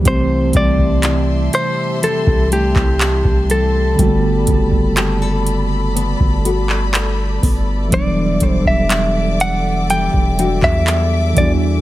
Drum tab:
HH |x-x-x-x-x-x-x-x-|x-x-x-x-x-x-x-o-|x-x-x-x-x-x-x-x-|
CP |----x------xx---|----x------xx---|----x------xx---|
BD |o-oo-----o-o-o--|o-oo-----o----o-|o-oo-----o-o--o-|